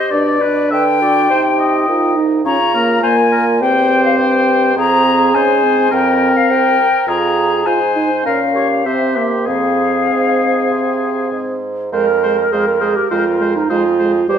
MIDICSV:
0, 0, Header, 1, 6, 480
1, 0, Start_track
1, 0, Key_signature, -4, "minor"
1, 0, Tempo, 592300
1, 95, Time_signature, 4, 2, 24, 8
1, 1055, Tempo, 578592
1, 6335, Tempo, 595238
1, 7295, Tempo, 614754
1, 9695, Tempo, 589971
1, 11692, End_track
2, 0, Start_track
2, 0, Title_t, "Flute"
2, 0, Program_c, 0, 73
2, 0, Note_on_c, 0, 75, 71
2, 90, Note_on_c, 0, 74, 70
2, 102, Note_off_c, 0, 75, 0
2, 578, Note_off_c, 0, 74, 0
2, 583, Note_on_c, 0, 79, 79
2, 1745, Note_off_c, 0, 79, 0
2, 2011, Note_on_c, 0, 82, 82
2, 2459, Note_off_c, 0, 82, 0
2, 2483, Note_on_c, 0, 80, 83
2, 2957, Note_off_c, 0, 80, 0
2, 2975, Note_on_c, 0, 79, 75
2, 3323, Note_off_c, 0, 79, 0
2, 3336, Note_on_c, 0, 77, 66
2, 3449, Note_off_c, 0, 77, 0
2, 3458, Note_on_c, 0, 79, 74
2, 3923, Note_off_c, 0, 79, 0
2, 3939, Note_on_c, 0, 82, 88
2, 4407, Note_on_c, 0, 80, 71
2, 4420, Note_off_c, 0, 82, 0
2, 4892, Note_on_c, 0, 79, 71
2, 4905, Note_off_c, 0, 80, 0
2, 5256, Note_on_c, 0, 77, 63
2, 5269, Note_off_c, 0, 79, 0
2, 5375, Note_on_c, 0, 79, 74
2, 5388, Note_off_c, 0, 77, 0
2, 5846, Note_off_c, 0, 79, 0
2, 5851, Note_on_c, 0, 82, 76
2, 6328, Note_on_c, 0, 80, 63
2, 6341, Note_off_c, 0, 82, 0
2, 6802, Note_off_c, 0, 80, 0
2, 6807, Note_on_c, 0, 77, 63
2, 7295, Note_on_c, 0, 76, 51
2, 7307, Note_off_c, 0, 77, 0
2, 7605, Note_off_c, 0, 76, 0
2, 7767, Note_on_c, 0, 77, 60
2, 9183, Note_off_c, 0, 77, 0
2, 9699, Note_on_c, 0, 70, 64
2, 11132, Note_on_c, 0, 68, 46
2, 11144, Note_off_c, 0, 70, 0
2, 11604, Note_off_c, 0, 68, 0
2, 11609, Note_on_c, 0, 72, 60
2, 11692, Note_off_c, 0, 72, 0
2, 11692, End_track
3, 0, Start_track
3, 0, Title_t, "Oboe"
3, 0, Program_c, 1, 68
3, 0, Note_on_c, 1, 72, 59
3, 87, Note_off_c, 1, 72, 0
3, 92, Note_on_c, 1, 74, 54
3, 334, Note_on_c, 1, 71, 60
3, 346, Note_off_c, 1, 74, 0
3, 572, Note_off_c, 1, 71, 0
3, 577, Note_on_c, 1, 76, 62
3, 685, Note_off_c, 1, 76, 0
3, 825, Note_on_c, 1, 74, 48
3, 1050, Note_off_c, 1, 74, 0
3, 1054, Note_on_c, 1, 72, 53
3, 1162, Note_off_c, 1, 72, 0
3, 1295, Note_on_c, 1, 75, 57
3, 1771, Note_off_c, 1, 75, 0
3, 2008, Note_on_c, 1, 73, 56
3, 2233, Note_off_c, 1, 73, 0
3, 2252, Note_on_c, 1, 70, 63
3, 2485, Note_off_c, 1, 70, 0
3, 2490, Note_on_c, 1, 72, 55
3, 2599, Note_off_c, 1, 72, 0
3, 2731, Note_on_c, 1, 70, 51
3, 2839, Note_off_c, 1, 70, 0
3, 2974, Note_on_c, 1, 72, 65
3, 3910, Note_off_c, 1, 72, 0
3, 3935, Note_on_c, 1, 68, 53
3, 4411, Note_on_c, 1, 72, 60
3, 4423, Note_off_c, 1, 68, 0
3, 4876, Note_off_c, 1, 72, 0
3, 4881, Note_on_c, 1, 70, 64
3, 5846, Note_on_c, 1, 68, 51
3, 5859, Note_off_c, 1, 70, 0
3, 6329, Note_on_c, 1, 72, 53
3, 6342, Note_off_c, 1, 68, 0
3, 6808, Note_off_c, 1, 72, 0
3, 6814, Note_on_c, 1, 70, 49
3, 6921, Note_off_c, 1, 70, 0
3, 7050, Note_on_c, 1, 73, 47
3, 7159, Note_off_c, 1, 73, 0
3, 7290, Note_on_c, 1, 72, 48
3, 7528, Note_on_c, 1, 67, 41
3, 7540, Note_off_c, 1, 72, 0
3, 7768, Note_on_c, 1, 68, 45
3, 7779, Note_off_c, 1, 67, 0
3, 9453, Note_off_c, 1, 68, 0
3, 9692, Note_on_c, 1, 72, 46
3, 9802, Note_off_c, 1, 72, 0
3, 9939, Note_on_c, 1, 72, 48
3, 10047, Note_off_c, 1, 72, 0
3, 10179, Note_on_c, 1, 72, 45
3, 10287, Note_off_c, 1, 72, 0
3, 10408, Note_on_c, 1, 72, 41
3, 10518, Note_off_c, 1, 72, 0
3, 10654, Note_on_c, 1, 72, 47
3, 10762, Note_off_c, 1, 72, 0
3, 10898, Note_on_c, 1, 72, 40
3, 11005, Note_off_c, 1, 72, 0
3, 11132, Note_on_c, 1, 72, 45
3, 11240, Note_off_c, 1, 72, 0
3, 11368, Note_on_c, 1, 72, 39
3, 11477, Note_off_c, 1, 72, 0
3, 11614, Note_on_c, 1, 72, 49
3, 11692, Note_off_c, 1, 72, 0
3, 11692, End_track
4, 0, Start_track
4, 0, Title_t, "Clarinet"
4, 0, Program_c, 2, 71
4, 0, Note_on_c, 2, 67, 51
4, 351, Note_off_c, 2, 67, 0
4, 585, Note_on_c, 2, 71, 51
4, 821, Note_on_c, 2, 66, 53
4, 833, Note_off_c, 2, 71, 0
4, 1061, Note_on_c, 2, 67, 52
4, 1073, Note_off_c, 2, 66, 0
4, 1539, Note_on_c, 2, 63, 51
4, 1552, Note_off_c, 2, 67, 0
4, 2013, Note_off_c, 2, 63, 0
4, 2019, Note_on_c, 2, 65, 53
4, 2957, Note_off_c, 2, 65, 0
4, 2975, Note_on_c, 2, 67, 55
4, 3936, Note_on_c, 2, 68, 50
4, 3949, Note_off_c, 2, 67, 0
4, 4167, Note_off_c, 2, 68, 0
4, 4172, Note_on_c, 2, 68, 54
4, 4876, Note_off_c, 2, 68, 0
4, 4887, Note_on_c, 2, 70, 47
4, 5369, Note_on_c, 2, 72, 50
4, 5381, Note_off_c, 2, 70, 0
4, 5849, Note_on_c, 2, 68, 47
4, 5862, Note_off_c, 2, 72, 0
4, 6582, Note_off_c, 2, 68, 0
4, 6805, Note_on_c, 2, 70, 48
4, 7030, Note_off_c, 2, 70, 0
4, 7045, Note_on_c, 2, 67, 46
4, 7285, Note_off_c, 2, 67, 0
4, 7296, Note_on_c, 2, 67, 42
4, 7765, Note_on_c, 2, 68, 44
4, 7777, Note_off_c, 2, 67, 0
4, 9452, Note_off_c, 2, 68, 0
4, 9689, Note_on_c, 2, 70, 74
4, 10174, Note_on_c, 2, 68, 61
4, 10186, Note_off_c, 2, 70, 0
4, 10298, Note_on_c, 2, 70, 62
4, 10310, Note_off_c, 2, 68, 0
4, 10408, Note_on_c, 2, 68, 64
4, 10420, Note_off_c, 2, 70, 0
4, 10532, Note_on_c, 2, 67, 59
4, 10544, Note_off_c, 2, 68, 0
4, 10648, Note_off_c, 2, 67, 0
4, 10653, Note_on_c, 2, 65, 69
4, 11018, Note_on_c, 2, 63, 62
4, 11030, Note_off_c, 2, 65, 0
4, 11131, Note_off_c, 2, 63, 0
4, 11136, Note_on_c, 2, 65, 71
4, 11603, Note_off_c, 2, 65, 0
4, 11615, Note_on_c, 2, 67, 74
4, 11692, Note_off_c, 2, 67, 0
4, 11692, End_track
5, 0, Start_track
5, 0, Title_t, "French horn"
5, 0, Program_c, 3, 60
5, 97, Note_on_c, 3, 62, 55
5, 322, Note_off_c, 3, 62, 0
5, 338, Note_on_c, 3, 62, 52
5, 1054, Note_on_c, 3, 63, 49
5, 1066, Note_off_c, 3, 62, 0
5, 1531, Note_on_c, 3, 65, 63
5, 1543, Note_off_c, 3, 63, 0
5, 1765, Note_on_c, 3, 63, 64
5, 1777, Note_off_c, 3, 65, 0
5, 2007, Note_off_c, 3, 63, 0
5, 2014, Note_on_c, 3, 61, 55
5, 2121, Note_off_c, 3, 61, 0
5, 2254, Note_on_c, 3, 58, 58
5, 2486, Note_off_c, 3, 58, 0
5, 2491, Note_on_c, 3, 58, 54
5, 2975, Note_on_c, 3, 60, 51
5, 2988, Note_off_c, 3, 58, 0
5, 3921, Note_off_c, 3, 60, 0
5, 3926, Note_on_c, 3, 60, 52
5, 4406, Note_on_c, 3, 61, 51
5, 4418, Note_off_c, 3, 60, 0
5, 4645, Note_on_c, 3, 60, 55
5, 4658, Note_off_c, 3, 61, 0
5, 4881, Note_off_c, 3, 60, 0
5, 4886, Note_on_c, 3, 60, 49
5, 5603, Note_off_c, 3, 60, 0
5, 5848, Note_on_c, 3, 65, 49
5, 6299, Note_off_c, 3, 65, 0
5, 6332, Note_on_c, 3, 65, 45
5, 6439, Note_off_c, 3, 65, 0
5, 6571, Note_on_c, 3, 63, 48
5, 6679, Note_off_c, 3, 63, 0
5, 6805, Note_on_c, 3, 61, 44
5, 7295, Note_on_c, 3, 60, 48
5, 7307, Note_off_c, 3, 61, 0
5, 7535, Note_on_c, 3, 58, 49
5, 7547, Note_off_c, 3, 60, 0
5, 7782, Note_on_c, 3, 60, 45
5, 7794, Note_off_c, 3, 58, 0
5, 9461, Note_off_c, 3, 60, 0
5, 9696, Note_on_c, 3, 56, 46
5, 9805, Note_off_c, 3, 56, 0
5, 9947, Note_on_c, 3, 56, 45
5, 10053, Note_off_c, 3, 56, 0
5, 10187, Note_on_c, 3, 56, 44
5, 10293, Note_off_c, 3, 56, 0
5, 10423, Note_on_c, 3, 56, 46
5, 10530, Note_off_c, 3, 56, 0
5, 10662, Note_on_c, 3, 56, 44
5, 10769, Note_off_c, 3, 56, 0
5, 10896, Note_on_c, 3, 56, 42
5, 11003, Note_off_c, 3, 56, 0
5, 11136, Note_on_c, 3, 56, 49
5, 11243, Note_off_c, 3, 56, 0
5, 11378, Note_on_c, 3, 56, 46
5, 11485, Note_off_c, 3, 56, 0
5, 11610, Note_on_c, 3, 55, 49
5, 11692, Note_off_c, 3, 55, 0
5, 11692, End_track
6, 0, Start_track
6, 0, Title_t, "Bassoon"
6, 0, Program_c, 4, 70
6, 91, Note_on_c, 4, 47, 60
6, 580, Note_on_c, 4, 50, 56
6, 592, Note_off_c, 4, 47, 0
6, 1045, Note_off_c, 4, 50, 0
6, 1050, Note_on_c, 4, 48, 57
6, 1519, Note_off_c, 4, 48, 0
6, 1532, Note_on_c, 4, 36, 56
6, 2001, Note_off_c, 4, 36, 0
6, 2005, Note_on_c, 4, 49, 58
6, 2480, Note_off_c, 4, 49, 0
6, 2492, Note_on_c, 4, 46, 56
6, 2976, Note_on_c, 4, 40, 54
6, 2988, Note_off_c, 4, 46, 0
6, 3439, Note_off_c, 4, 40, 0
6, 3444, Note_on_c, 4, 43, 56
6, 3930, Note_on_c, 4, 41, 57
6, 3942, Note_off_c, 4, 43, 0
6, 4403, Note_off_c, 4, 41, 0
6, 4408, Note_on_c, 4, 44, 53
6, 4879, Note_off_c, 4, 44, 0
6, 4890, Note_on_c, 4, 41, 59
6, 5225, Note_off_c, 4, 41, 0
6, 5366, Note_on_c, 4, 36, 56
6, 5673, Note_off_c, 4, 36, 0
6, 5844, Note_on_c, 4, 41, 56
6, 6297, Note_off_c, 4, 41, 0
6, 6330, Note_on_c, 4, 44, 49
6, 6799, Note_off_c, 4, 44, 0
6, 6808, Note_on_c, 4, 46, 49
6, 7291, Note_on_c, 4, 48, 48
6, 7303, Note_off_c, 4, 46, 0
6, 7777, Note_on_c, 4, 41, 45
6, 7788, Note_off_c, 4, 48, 0
6, 8258, Note_off_c, 4, 41, 0
6, 8262, Note_on_c, 4, 44, 47
6, 8733, Note_off_c, 4, 44, 0
6, 8740, Note_on_c, 4, 48, 43
6, 9208, Note_off_c, 4, 48, 0
6, 9216, Note_on_c, 4, 44, 42
6, 9683, Note_off_c, 4, 44, 0
6, 9687, Note_on_c, 4, 41, 55
6, 10119, Note_off_c, 4, 41, 0
6, 10181, Note_on_c, 4, 41, 52
6, 10529, Note_off_c, 4, 41, 0
6, 10656, Note_on_c, 4, 41, 55
6, 11078, Note_off_c, 4, 41, 0
6, 11132, Note_on_c, 4, 41, 54
6, 11554, Note_off_c, 4, 41, 0
6, 11614, Note_on_c, 4, 40, 56
6, 11692, Note_off_c, 4, 40, 0
6, 11692, End_track
0, 0, End_of_file